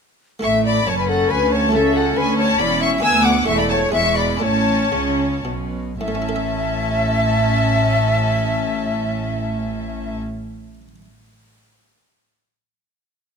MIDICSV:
0, 0, Header, 1, 8, 480
1, 0, Start_track
1, 0, Key_signature, 3, "major"
1, 0, Tempo, 434468
1, 484, Time_signature, 3, 2, 24, 8
1, 3839, Tempo, 482703
1, 5279, Tempo, 542986
1, 6239, Tempo, 567108
1, 12462, End_track
2, 0, Start_track
2, 0, Title_t, "Violin section"
2, 0, Program_c, 0, 48
2, 481, Note_on_c, 0, 85, 109
2, 569, Note_off_c, 0, 85, 0
2, 726, Note_on_c, 0, 83, 100
2, 962, Note_off_c, 0, 83, 0
2, 964, Note_on_c, 0, 81, 98
2, 1085, Note_off_c, 0, 81, 0
2, 1092, Note_on_c, 0, 80, 91
2, 1201, Note_on_c, 0, 78, 100
2, 1208, Note_off_c, 0, 80, 0
2, 1437, Note_off_c, 0, 78, 0
2, 1438, Note_on_c, 0, 80, 104
2, 1675, Note_off_c, 0, 80, 0
2, 1680, Note_on_c, 0, 81, 104
2, 1916, Note_off_c, 0, 81, 0
2, 1919, Note_on_c, 0, 76, 113
2, 2160, Note_off_c, 0, 76, 0
2, 2161, Note_on_c, 0, 78, 102
2, 2399, Note_off_c, 0, 78, 0
2, 2402, Note_on_c, 0, 80, 114
2, 2632, Note_off_c, 0, 80, 0
2, 2638, Note_on_c, 0, 81, 121
2, 2865, Note_on_c, 0, 83, 124
2, 2869, Note_off_c, 0, 81, 0
2, 3107, Note_off_c, 0, 83, 0
2, 3110, Note_on_c, 0, 85, 125
2, 3199, Note_off_c, 0, 85, 0
2, 3350, Note_on_c, 0, 88, 127
2, 3587, Note_off_c, 0, 88, 0
2, 3592, Note_on_c, 0, 86, 113
2, 3837, Note_on_c, 0, 85, 117
2, 3838, Note_off_c, 0, 86, 0
2, 3948, Note_off_c, 0, 85, 0
2, 3954, Note_on_c, 0, 83, 118
2, 3999, Note_off_c, 0, 83, 0
2, 4063, Note_on_c, 0, 81, 122
2, 4143, Note_off_c, 0, 81, 0
2, 4296, Note_on_c, 0, 85, 115
2, 4528, Note_off_c, 0, 85, 0
2, 4534, Note_on_c, 0, 83, 100
2, 4774, Note_on_c, 0, 81, 110
2, 4776, Note_off_c, 0, 83, 0
2, 5726, Note_off_c, 0, 81, 0
2, 6235, Note_on_c, 0, 81, 101
2, 9762, Note_off_c, 0, 81, 0
2, 12462, End_track
3, 0, Start_track
3, 0, Title_t, "Flute"
3, 0, Program_c, 1, 73
3, 479, Note_on_c, 1, 76, 111
3, 706, Note_off_c, 1, 76, 0
3, 719, Note_on_c, 1, 74, 93
3, 961, Note_on_c, 1, 73, 90
3, 977, Note_off_c, 1, 74, 0
3, 1075, Note_off_c, 1, 73, 0
3, 1082, Note_on_c, 1, 71, 83
3, 1205, Note_on_c, 1, 69, 96
3, 1222, Note_off_c, 1, 71, 0
3, 1444, Note_on_c, 1, 71, 100
3, 1461, Note_off_c, 1, 69, 0
3, 1680, Note_on_c, 1, 73, 88
3, 1696, Note_off_c, 1, 71, 0
3, 1914, Note_off_c, 1, 73, 0
3, 1921, Note_on_c, 1, 69, 110
3, 2153, Note_off_c, 1, 69, 0
3, 2160, Note_on_c, 1, 69, 92
3, 2400, Note_on_c, 1, 71, 98
3, 2416, Note_off_c, 1, 69, 0
3, 2627, Note_off_c, 1, 71, 0
3, 2633, Note_on_c, 1, 73, 101
3, 2864, Note_off_c, 1, 73, 0
3, 2870, Note_on_c, 1, 74, 103
3, 3106, Note_on_c, 1, 76, 108
3, 3123, Note_off_c, 1, 74, 0
3, 3344, Note_off_c, 1, 76, 0
3, 3351, Note_on_c, 1, 80, 127
3, 3591, Note_on_c, 1, 78, 99
3, 3608, Note_off_c, 1, 80, 0
3, 3838, Note_off_c, 1, 78, 0
3, 3842, Note_on_c, 1, 76, 109
3, 3947, Note_on_c, 1, 74, 87
3, 3962, Note_off_c, 1, 76, 0
3, 4057, Note_off_c, 1, 74, 0
3, 4063, Note_on_c, 1, 73, 106
3, 4288, Note_off_c, 1, 73, 0
3, 4294, Note_on_c, 1, 76, 111
3, 4526, Note_on_c, 1, 74, 89
3, 4541, Note_off_c, 1, 76, 0
3, 4763, Note_off_c, 1, 74, 0
3, 4769, Note_on_c, 1, 73, 100
3, 5724, Note_off_c, 1, 73, 0
3, 6239, Note_on_c, 1, 76, 98
3, 9764, Note_off_c, 1, 76, 0
3, 12462, End_track
4, 0, Start_track
4, 0, Title_t, "Violin section"
4, 0, Program_c, 2, 48
4, 479, Note_on_c, 2, 76, 99
4, 706, Note_off_c, 2, 76, 0
4, 724, Note_on_c, 2, 74, 92
4, 955, Note_on_c, 2, 73, 93
4, 961, Note_off_c, 2, 74, 0
4, 1076, Note_on_c, 2, 71, 81
4, 1080, Note_off_c, 2, 73, 0
4, 1198, Note_off_c, 2, 71, 0
4, 1198, Note_on_c, 2, 69, 88
4, 1433, Note_on_c, 2, 71, 99
4, 1440, Note_off_c, 2, 69, 0
4, 1677, Note_off_c, 2, 71, 0
4, 1679, Note_on_c, 2, 73, 87
4, 1918, Note_on_c, 2, 69, 103
4, 1920, Note_off_c, 2, 73, 0
4, 2007, Note_off_c, 2, 69, 0
4, 2155, Note_on_c, 2, 69, 98
4, 2391, Note_off_c, 2, 69, 0
4, 2397, Note_on_c, 2, 71, 99
4, 2633, Note_on_c, 2, 73, 102
4, 2634, Note_off_c, 2, 71, 0
4, 2866, Note_off_c, 2, 73, 0
4, 2866, Note_on_c, 2, 74, 113
4, 3107, Note_off_c, 2, 74, 0
4, 3112, Note_on_c, 2, 76, 109
4, 3350, Note_on_c, 2, 80, 127
4, 3351, Note_off_c, 2, 76, 0
4, 3590, Note_on_c, 2, 78, 104
4, 3592, Note_off_c, 2, 80, 0
4, 3837, Note_off_c, 2, 78, 0
4, 3839, Note_on_c, 2, 76, 109
4, 3945, Note_on_c, 2, 74, 90
4, 3951, Note_off_c, 2, 76, 0
4, 4062, Note_off_c, 2, 74, 0
4, 4068, Note_on_c, 2, 73, 100
4, 4297, Note_on_c, 2, 76, 117
4, 4298, Note_off_c, 2, 73, 0
4, 4529, Note_off_c, 2, 76, 0
4, 4535, Note_on_c, 2, 74, 84
4, 4772, Note_off_c, 2, 74, 0
4, 4776, Note_on_c, 2, 73, 93
4, 5746, Note_off_c, 2, 73, 0
4, 6242, Note_on_c, 2, 76, 88
4, 9766, Note_off_c, 2, 76, 0
4, 12462, End_track
5, 0, Start_track
5, 0, Title_t, "Harpsichord"
5, 0, Program_c, 3, 6
5, 435, Note_on_c, 3, 57, 56
5, 450, Note_on_c, 3, 64, 62
5, 467, Note_on_c, 3, 69, 58
5, 482, Note_on_c, 3, 45, 65
5, 922, Note_off_c, 3, 45, 0
5, 961, Note_on_c, 3, 42, 63
5, 1397, Note_off_c, 3, 42, 0
5, 1445, Note_on_c, 3, 38, 69
5, 1853, Note_off_c, 3, 57, 0
5, 1861, Note_off_c, 3, 64, 0
5, 1868, Note_on_c, 3, 57, 61
5, 1870, Note_off_c, 3, 69, 0
5, 1878, Note_off_c, 3, 38, 0
5, 1883, Note_on_c, 3, 64, 67
5, 1901, Note_on_c, 3, 69, 61
5, 1918, Note_on_c, 3, 37, 69
5, 2353, Note_off_c, 3, 37, 0
5, 2392, Note_on_c, 3, 38, 70
5, 2825, Note_off_c, 3, 38, 0
5, 2870, Note_on_c, 3, 40, 77
5, 3280, Note_off_c, 3, 57, 0
5, 3287, Note_off_c, 3, 64, 0
5, 3297, Note_off_c, 3, 69, 0
5, 3297, Note_on_c, 3, 62, 68
5, 3305, Note_off_c, 3, 40, 0
5, 3314, Note_on_c, 3, 66, 65
5, 3331, Note_on_c, 3, 71, 64
5, 3347, Note_on_c, 3, 38, 76
5, 3787, Note_on_c, 3, 61, 65
5, 3792, Note_off_c, 3, 38, 0
5, 3796, Note_off_c, 3, 62, 0
5, 3801, Note_on_c, 3, 64, 68
5, 3804, Note_off_c, 3, 66, 0
5, 3813, Note_off_c, 3, 71, 0
5, 3819, Note_on_c, 3, 69, 66
5, 3837, Note_on_c, 3, 40, 77
5, 4251, Note_on_c, 3, 62, 62
5, 4252, Note_off_c, 3, 64, 0
5, 4256, Note_off_c, 3, 40, 0
5, 4259, Note_off_c, 3, 61, 0
5, 4264, Note_on_c, 3, 64, 65
5, 4274, Note_off_c, 3, 69, 0
5, 4280, Note_on_c, 3, 68, 63
5, 4294, Note_on_c, 3, 40, 75
5, 4728, Note_on_c, 3, 61, 60
5, 4734, Note_off_c, 3, 64, 0
5, 4735, Note_off_c, 3, 40, 0
5, 4738, Note_off_c, 3, 62, 0
5, 4746, Note_on_c, 3, 64, 59
5, 4753, Note_off_c, 3, 68, 0
5, 4759, Note_on_c, 3, 69, 60
5, 4774, Note_on_c, 3, 45, 66
5, 5237, Note_off_c, 3, 45, 0
5, 5277, Note_on_c, 3, 49, 64
5, 5710, Note_off_c, 3, 49, 0
5, 5744, Note_on_c, 3, 47, 64
5, 6181, Note_off_c, 3, 61, 0
5, 6189, Note_off_c, 3, 64, 0
5, 6195, Note_off_c, 3, 69, 0
5, 6202, Note_off_c, 3, 47, 0
5, 6239, Note_on_c, 3, 45, 67
5, 6299, Note_on_c, 3, 57, 65
5, 6358, Note_on_c, 3, 61, 69
5, 6417, Note_on_c, 3, 64, 69
5, 6475, Note_on_c, 3, 69, 66
5, 6535, Note_on_c, 3, 76, 68
5, 10243, Note_off_c, 3, 45, 0
5, 10303, Note_off_c, 3, 57, 0
5, 10362, Note_off_c, 3, 61, 0
5, 10421, Note_off_c, 3, 64, 0
5, 10475, Note_off_c, 3, 69, 0
5, 10505, Note_off_c, 3, 76, 0
5, 12462, End_track
6, 0, Start_track
6, 0, Title_t, "Viola section"
6, 0, Program_c, 4, 48
6, 480, Note_on_c, 4, 57, 67
6, 931, Note_off_c, 4, 57, 0
6, 963, Note_on_c, 4, 61, 78
6, 1901, Note_off_c, 4, 61, 0
6, 1921, Note_on_c, 4, 61, 87
6, 3321, Note_off_c, 4, 61, 0
6, 3350, Note_on_c, 4, 59, 87
6, 3828, Note_off_c, 4, 59, 0
6, 3840, Note_on_c, 4, 57, 89
6, 4288, Note_off_c, 4, 57, 0
6, 4298, Note_on_c, 4, 56, 75
6, 4777, Note_off_c, 4, 56, 0
6, 4778, Note_on_c, 4, 61, 81
6, 6010, Note_off_c, 4, 61, 0
6, 6242, Note_on_c, 4, 61, 83
6, 9766, Note_off_c, 4, 61, 0
6, 12462, End_track
7, 0, Start_track
7, 0, Title_t, "Cello section"
7, 0, Program_c, 5, 48
7, 483, Note_on_c, 5, 45, 85
7, 932, Note_off_c, 5, 45, 0
7, 961, Note_on_c, 5, 42, 79
7, 1431, Note_off_c, 5, 42, 0
7, 1440, Note_on_c, 5, 38, 79
7, 1910, Note_off_c, 5, 38, 0
7, 1919, Note_on_c, 5, 37, 88
7, 2397, Note_off_c, 5, 37, 0
7, 2397, Note_on_c, 5, 38, 84
7, 2862, Note_off_c, 5, 38, 0
7, 2869, Note_on_c, 5, 40, 86
7, 3339, Note_off_c, 5, 40, 0
7, 3348, Note_on_c, 5, 38, 102
7, 3827, Note_off_c, 5, 38, 0
7, 3837, Note_on_c, 5, 40, 86
7, 4282, Note_off_c, 5, 40, 0
7, 4294, Note_on_c, 5, 40, 85
7, 4765, Note_off_c, 5, 40, 0
7, 4780, Note_on_c, 5, 45, 80
7, 5270, Note_off_c, 5, 45, 0
7, 5278, Note_on_c, 5, 49, 77
7, 5736, Note_off_c, 5, 49, 0
7, 5748, Note_on_c, 5, 47, 72
7, 6229, Note_off_c, 5, 47, 0
7, 6235, Note_on_c, 5, 45, 82
7, 9762, Note_off_c, 5, 45, 0
7, 12462, End_track
8, 0, Start_track
8, 0, Title_t, "Double bass section"
8, 0, Program_c, 6, 48
8, 482, Note_on_c, 6, 33, 84
8, 932, Note_off_c, 6, 33, 0
8, 964, Note_on_c, 6, 30, 85
8, 1433, Note_off_c, 6, 30, 0
8, 1442, Note_on_c, 6, 38, 86
8, 1912, Note_off_c, 6, 38, 0
8, 1917, Note_on_c, 6, 37, 96
8, 2396, Note_off_c, 6, 37, 0
8, 2396, Note_on_c, 6, 38, 87
8, 2861, Note_off_c, 6, 38, 0
8, 2868, Note_on_c, 6, 28, 88
8, 3339, Note_off_c, 6, 28, 0
8, 3349, Note_on_c, 6, 38, 96
8, 3827, Note_off_c, 6, 38, 0
8, 3836, Note_on_c, 6, 28, 93
8, 4282, Note_off_c, 6, 28, 0
8, 4294, Note_on_c, 6, 28, 89
8, 4765, Note_off_c, 6, 28, 0
8, 4775, Note_on_c, 6, 33, 86
8, 5268, Note_off_c, 6, 33, 0
8, 5277, Note_on_c, 6, 37, 84
8, 5736, Note_off_c, 6, 37, 0
8, 5744, Note_on_c, 6, 35, 74
8, 6227, Note_off_c, 6, 35, 0
8, 6238, Note_on_c, 6, 33, 90
8, 9764, Note_off_c, 6, 33, 0
8, 12462, End_track
0, 0, End_of_file